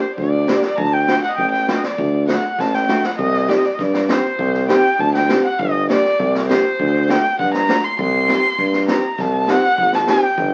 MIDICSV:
0, 0, Header, 1, 5, 480
1, 0, Start_track
1, 0, Tempo, 600000
1, 624, Time_signature, 2, 2, 24, 8
1, 8430, End_track
2, 0, Start_track
2, 0, Title_t, "Erhu"
2, 0, Program_c, 0, 110
2, 8, Note_on_c, 0, 72, 70
2, 127, Note_off_c, 0, 72, 0
2, 132, Note_on_c, 0, 74, 86
2, 599, Note_on_c, 0, 82, 60
2, 611, Note_off_c, 0, 74, 0
2, 620, Note_on_c, 0, 81, 88
2, 632, Note_off_c, 0, 82, 0
2, 748, Note_on_c, 0, 79, 92
2, 760, Note_off_c, 0, 81, 0
2, 982, Note_off_c, 0, 79, 0
2, 987, Note_on_c, 0, 78, 89
2, 1024, Note_on_c, 0, 75, 69
2, 1036, Note_off_c, 0, 78, 0
2, 1043, Note_on_c, 0, 78, 76
2, 1055, Note_off_c, 0, 75, 0
2, 1092, Note_off_c, 0, 78, 0
2, 1097, Note_on_c, 0, 79, 93
2, 1210, Note_off_c, 0, 79, 0
2, 1215, Note_on_c, 0, 79, 77
2, 1392, Note_off_c, 0, 79, 0
2, 1407, Note_on_c, 0, 75, 53
2, 1462, Note_on_c, 0, 74, 77
2, 1474, Note_off_c, 0, 75, 0
2, 1824, Note_off_c, 0, 74, 0
2, 1829, Note_on_c, 0, 78, 76
2, 2075, Note_on_c, 0, 81, 84
2, 2087, Note_off_c, 0, 78, 0
2, 2197, Note_on_c, 0, 79, 77
2, 2209, Note_off_c, 0, 81, 0
2, 2439, Note_on_c, 0, 78, 69
2, 2451, Note_off_c, 0, 79, 0
2, 2541, Note_off_c, 0, 78, 0
2, 2546, Note_on_c, 0, 75, 81
2, 2786, Note_on_c, 0, 74, 72
2, 2798, Note_off_c, 0, 75, 0
2, 2854, Note_on_c, 0, 75, 72
2, 2866, Note_off_c, 0, 74, 0
2, 2916, Note_on_c, 0, 74, 61
2, 2928, Note_off_c, 0, 75, 0
2, 2988, Note_on_c, 0, 75, 71
2, 3000, Note_off_c, 0, 74, 0
2, 3055, Note_on_c, 0, 74, 75
2, 3067, Note_off_c, 0, 75, 0
2, 3281, Note_on_c, 0, 72, 80
2, 3293, Note_off_c, 0, 74, 0
2, 3741, Note_off_c, 0, 72, 0
2, 3746, Note_on_c, 0, 79, 99
2, 3998, Note_on_c, 0, 81, 100
2, 4010, Note_off_c, 0, 79, 0
2, 4114, Note_off_c, 0, 81, 0
2, 4119, Note_on_c, 0, 79, 85
2, 4340, Note_off_c, 0, 79, 0
2, 4358, Note_on_c, 0, 78, 84
2, 4468, Note_on_c, 0, 75, 78
2, 4480, Note_off_c, 0, 78, 0
2, 4701, Note_off_c, 0, 75, 0
2, 4706, Note_on_c, 0, 74, 102
2, 5158, Note_off_c, 0, 74, 0
2, 5194, Note_on_c, 0, 72, 88
2, 5679, Note_on_c, 0, 79, 93
2, 5691, Note_off_c, 0, 72, 0
2, 5912, Note_off_c, 0, 79, 0
2, 5916, Note_on_c, 0, 78, 91
2, 6026, Note_off_c, 0, 78, 0
2, 6034, Note_on_c, 0, 82, 97
2, 6268, Note_on_c, 0, 84, 85
2, 6280, Note_off_c, 0, 82, 0
2, 6389, Note_off_c, 0, 84, 0
2, 6394, Note_on_c, 0, 84, 86
2, 7077, Note_off_c, 0, 84, 0
2, 7113, Note_on_c, 0, 82, 72
2, 7357, Note_on_c, 0, 81, 86
2, 7369, Note_off_c, 0, 82, 0
2, 7596, Note_on_c, 0, 78, 107
2, 7608, Note_off_c, 0, 81, 0
2, 7957, Note_on_c, 0, 81, 89
2, 7969, Note_off_c, 0, 78, 0
2, 8069, Note_off_c, 0, 81, 0
2, 8075, Note_on_c, 0, 79, 81
2, 8430, Note_off_c, 0, 79, 0
2, 8430, End_track
3, 0, Start_track
3, 0, Title_t, "Nylon-string guitar"
3, 0, Program_c, 1, 24
3, 378, Note_on_c, 1, 58, 61
3, 381, Note_on_c, 1, 62, 51
3, 385, Note_on_c, 1, 67, 63
3, 501, Note_off_c, 1, 58, 0
3, 503, Note_off_c, 1, 62, 0
3, 504, Note_off_c, 1, 67, 0
3, 863, Note_on_c, 1, 57, 59
3, 866, Note_on_c, 1, 62, 53
3, 868, Note_on_c, 1, 66, 71
3, 985, Note_off_c, 1, 57, 0
3, 986, Note_off_c, 1, 62, 0
3, 987, Note_off_c, 1, 66, 0
3, 1340, Note_on_c, 1, 57, 60
3, 1345, Note_on_c, 1, 62, 50
3, 1348, Note_on_c, 1, 66, 61
3, 1465, Note_off_c, 1, 57, 0
3, 1466, Note_off_c, 1, 62, 0
3, 1469, Note_off_c, 1, 66, 0
3, 1820, Note_on_c, 1, 57, 63
3, 1823, Note_on_c, 1, 62, 50
3, 1827, Note_on_c, 1, 66, 54
3, 1945, Note_off_c, 1, 57, 0
3, 1947, Note_off_c, 1, 62, 0
3, 1948, Note_off_c, 1, 66, 0
3, 2302, Note_on_c, 1, 57, 65
3, 2305, Note_on_c, 1, 62, 55
3, 2311, Note_on_c, 1, 66, 85
3, 2427, Note_off_c, 1, 57, 0
3, 2429, Note_off_c, 1, 62, 0
3, 2430, Note_off_c, 1, 66, 0
3, 2781, Note_on_c, 1, 60, 49
3, 2785, Note_on_c, 1, 63, 53
3, 2789, Note_on_c, 1, 67, 68
3, 2907, Note_off_c, 1, 60, 0
3, 2910, Note_off_c, 1, 63, 0
3, 2912, Note_off_c, 1, 67, 0
3, 3268, Note_on_c, 1, 60, 55
3, 3272, Note_on_c, 1, 63, 54
3, 3279, Note_on_c, 1, 67, 64
3, 3391, Note_off_c, 1, 60, 0
3, 3394, Note_off_c, 1, 63, 0
3, 3395, Note_off_c, 1, 67, 0
3, 3745, Note_on_c, 1, 60, 60
3, 3748, Note_on_c, 1, 63, 50
3, 3754, Note_on_c, 1, 67, 67
3, 3870, Note_off_c, 1, 60, 0
3, 3872, Note_off_c, 1, 63, 0
3, 3873, Note_off_c, 1, 67, 0
3, 4224, Note_on_c, 1, 60, 57
3, 4228, Note_on_c, 1, 63, 58
3, 4236, Note_on_c, 1, 67, 63
3, 4350, Note_off_c, 1, 60, 0
3, 4352, Note_off_c, 1, 63, 0
3, 4355, Note_off_c, 1, 67, 0
3, 4709, Note_on_c, 1, 58, 62
3, 4714, Note_on_c, 1, 62, 52
3, 4719, Note_on_c, 1, 67, 74
3, 4832, Note_off_c, 1, 58, 0
3, 4834, Note_off_c, 1, 62, 0
3, 4837, Note_off_c, 1, 67, 0
3, 5189, Note_on_c, 1, 58, 57
3, 5192, Note_on_c, 1, 62, 58
3, 5194, Note_on_c, 1, 67, 77
3, 5312, Note_off_c, 1, 58, 0
3, 5312, Note_off_c, 1, 62, 0
3, 5314, Note_off_c, 1, 67, 0
3, 5663, Note_on_c, 1, 57, 59
3, 5667, Note_on_c, 1, 62, 61
3, 5670, Note_on_c, 1, 66, 68
3, 5788, Note_off_c, 1, 57, 0
3, 5789, Note_off_c, 1, 62, 0
3, 5791, Note_off_c, 1, 66, 0
3, 6141, Note_on_c, 1, 57, 65
3, 6146, Note_on_c, 1, 62, 51
3, 6150, Note_on_c, 1, 66, 67
3, 6266, Note_off_c, 1, 57, 0
3, 6267, Note_off_c, 1, 62, 0
3, 6270, Note_off_c, 1, 66, 0
3, 6622, Note_on_c, 1, 60, 51
3, 6627, Note_on_c, 1, 63, 45
3, 6634, Note_on_c, 1, 67, 68
3, 6745, Note_off_c, 1, 60, 0
3, 6749, Note_off_c, 1, 63, 0
3, 6750, Note_off_c, 1, 67, 0
3, 7101, Note_on_c, 1, 60, 56
3, 7106, Note_on_c, 1, 63, 53
3, 7108, Note_on_c, 1, 67, 63
3, 7224, Note_off_c, 1, 60, 0
3, 7226, Note_off_c, 1, 63, 0
3, 7227, Note_off_c, 1, 67, 0
3, 7577, Note_on_c, 1, 60, 56
3, 7583, Note_on_c, 1, 63, 54
3, 7588, Note_on_c, 1, 67, 70
3, 7701, Note_off_c, 1, 60, 0
3, 7704, Note_off_c, 1, 63, 0
3, 7705, Note_off_c, 1, 67, 0
3, 8057, Note_on_c, 1, 60, 62
3, 8063, Note_on_c, 1, 63, 61
3, 8068, Note_on_c, 1, 67, 68
3, 8179, Note_off_c, 1, 60, 0
3, 8182, Note_off_c, 1, 63, 0
3, 8184, Note_off_c, 1, 67, 0
3, 8430, End_track
4, 0, Start_track
4, 0, Title_t, "Tuba"
4, 0, Program_c, 2, 58
4, 144, Note_on_c, 2, 38, 87
4, 433, Note_off_c, 2, 38, 0
4, 623, Note_on_c, 2, 38, 84
4, 913, Note_off_c, 2, 38, 0
4, 1107, Note_on_c, 2, 33, 84
4, 1396, Note_off_c, 2, 33, 0
4, 1586, Note_on_c, 2, 38, 93
4, 1876, Note_off_c, 2, 38, 0
4, 2069, Note_on_c, 2, 33, 89
4, 2358, Note_off_c, 2, 33, 0
4, 2549, Note_on_c, 2, 36, 104
4, 2839, Note_off_c, 2, 36, 0
4, 3032, Note_on_c, 2, 43, 86
4, 3321, Note_off_c, 2, 43, 0
4, 3511, Note_on_c, 2, 36, 103
4, 3800, Note_off_c, 2, 36, 0
4, 3991, Note_on_c, 2, 38, 90
4, 4280, Note_off_c, 2, 38, 0
4, 4472, Note_on_c, 2, 31, 98
4, 4761, Note_off_c, 2, 31, 0
4, 4955, Note_on_c, 2, 36, 99
4, 5242, Note_off_c, 2, 36, 0
4, 5436, Note_on_c, 2, 38, 102
4, 5723, Note_off_c, 2, 38, 0
4, 5913, Note_on_c, 2, 43, 77
4, 6200, Note_off_c, 2, 43, 0
4, 6391, Note_on_c, 2, 36, 105
4, 6677, Note_off_c, 2, 36, 0
4, 6869, Note_on_c, 2, 43, 86
4, 7155, Note_off_c, 2, 43, 0
4, 7344, Note_on_c, 2, 36, 95
4, 7632, Note_off_c, 2, 36, 0
4, 7823, Note_on_c, 2, 32, 76
4, 8110, Note_off_c, 2, 32, 0
4, 8301, Note_on_c, 2, 31, 98
4, 8430, Note_off_c, 2, 31, 0
4, 8430, End_track
5, 0, Start_track
5, 0, Title_t, "Drums"
5, 143, Note_on_c, 9, 36, 61
5, 223, Note_off_c, 9, 36, 0
5, 383, Note_on_c, 9, 38, 90
5, 463, Note_off_c, 9, 38, 0
5, 499, Note_on_c, 9, 38, 62
5, 579, Note_off_c, 9, 38, 0
5, 623, Note_on_c, 9, 36, 79
5, 703, Note_off_c, 9, 36, 0
5, 863, Note_on_c, 9, 38, 75
5, 943, Note_off_c, 9, 38, 0
5, 983, Note_on_c, 9, 38, 23
5, 1063, Note_off_c, 9, 38, 0
5, 1105, Note_on_c, 9, 36, 60
5, 1185, Note_off_c, 9, 36, 0
5, 1230, Note_on_c, 9, 38, 21
5, 1310, Note_off_c, 9, 38, 0
5, 1347, Note_on_c, 9, 38, 94
5, 1427, Note_off_c, 9, 38, 0
5, 1467, Note_on_c, 9, 38, 61
5, 1547, Note_off_c, 9, 38, 0
5, 1587, Note_on_c, 9, 36, 82
5, 1667, Note_off_c, 9, 36, 0
5, 1827, Note_on_c, 9, 38, 78
5, 1907, Note_off_c, 9, 38, 0
5, 2069, Note_on_c, 9, 36, 56
5, 2074, Note_on_c, 9, 38, 46
5, 2149, Note_off_c, 9, 36, 0
5, 2154, Note_off_c, 9, 38, 0
5, 2189, Note_on_c, 9, 38, 45
5, 2269, Note_off_c, 9, 38, 0
5, 2308, Note_on_c, 9, 38, 69
5, 2388, Note_off_c, 9, 38, 0
5, 2428, Note_on_c, 9, 38, 58
5, 2508, Note_off_c, 9, 38, 0
5, 2550, Note_on_c, 9, 36, 69
5, 2630, Note_off_c, 9, 36, 0
5, 2673, Note_on_c, 9, 38, 26
5, 2753, Note_off_c, 9, 38, 0
5, 2792, Note_on_c, 9, 38, 73
5, 2872, Note_off_c, 9, 38, 0
5, 2908, Note_on_c, 9, 38, 28
5, 2988, Note_off_c, 9, 38, 0
5, 3031, Note_on_c, 9, 36, 66
5, 3031, Note_on_c, 9, 38, 25
5, 3111, Note_off_c, 9, 36, 0
5, 3111, Note_off_c, 9, 38, 0
5, 3150, Note_on_c, 9, 38, 67
5, 3230, Note_off_c, 9, 38, 0
5, 3271, Note_on_c, 9, 38, 98
5, 3351, Note_off_c, 9, 38, 0
5, 3512, Note_on_c, 9, 36, 73
5, 3592, Note_off_c, 9, 36, 0
5, 3632, Note_on_c, 9, 38, 23
5, 3712, Note_off_c, 9, 38, 0
5, 3752, Note_on_c, 9, 38, 82
5, 3832, Note_off_c, 9, 38, 0
5, 3994, Note_on_c, 9, 36, 62
5, 4074, Note_off_c, 9, 36, 0
5, 4115, Note_on_c, 9, 38, 57
5, 4195, Note_off_c, 9, 38, 0
5, 4232, Note_on_c, 9, 38, 92
5, 4312, Note_off_c, 9, 38, 0
5, 4474, Note_on_c, 9, 36, 68
5, 4554, Note_off_c, 9, 36, 0
5, 4716, Note_on_c, 9, 38, 73
5, 4796, Note_off_c, 9, 38, 0
5, 4840, Note_on_c, 9, 38, 27
5, 4920, Note_off_c, 9, 38, 0
5, 4957, Note_on_c, 9, 36, 64
5, 5037, Note_off_c, 9, 36, 0
5, 5078, Note_on_c, 9, 38, 63
5, 5158, Note_off_c, 9, 38, 0
5, 5202, Note_on_c, 9, 38, 99
5, 5282, Note_off_c, 9, 38, 0
5, 5436, Note_on_c, 9, 36, 71
5, 5516, Note_off_c, 9, 36, 0
5, 5677, Note_on_c, 9, 38, 79
5, 5757, Note_off_c, 9, 38, 0
5, 5914, Note_on_c, 9, 36, 74
5, 5994, Note_off_c, 9, 36, 0
5, 6031, Note_on_c, 9, 38, 60
5, 6111, Note_off_c, 9, 38, 0
5, 6152, Note_on_c, 9, 38, 96
5, 6232, Note_off_c, 9, 38, 0
5, 6391, Note_on_c, 9, 36, 82
5, 6471, Note_off_c, 9, 36, 0
5, 6627, Note_on_c, 9, 38, 70
5, 6707, Note_off_c, 9, 38, 0
5, 6751, Note_on_c, 9, 38, 26
5, 6831, Note_off_c, 9, 38, 0
5, 6862, Note_on_c, 9, 38, 25
5, 6868, Note_on_c, 9, 36, 61
5, 6942, Note_off_c, 9, 38, 0
5, 6948, Note_off_c, 9, 36, 0
5, 6985, Note_on_c, 9, 38, 53
5, 7065, Note_off_c, 9, 38, 0
5, 7104, Note_on_c, 9, 38, 96
5, 7184, Note_off_c, 9, 38, 0
5, 7343, Note_on_c, 9, 38, 28
5, 7347, Note_on_c, 9, 36, 67
5, 7423, Note_off_c, 9, 38, 0
5, 7427, Note_off_c, 9, 36, 0
5, 7583, Note_on_c, 9, 38, 70
5, 7663, Note_off_c, 9, 38, 0
5, 7708, Note_on_c, 9, 38, 25
5, 7788, Note_off_c, 9, 38, 0
5, 7825, Note_on_c, 9, 36, 65
5, 7905, Note_off_c, 9, 36, 0
5, 7942, Note_on_c, 9, 38, 61
5, 8022, Note_off_c, 9, 38, 0
5, 8057, Note_on_c, 9, 38, 93
5, 8137, Note_off_c, 9, 38, 0
5, 8301, Note_on_c, 9, 36, 84
5, 8381, Note_off_c, 9, 36, 0
5, 8430, End_track
0, 0, End_of_file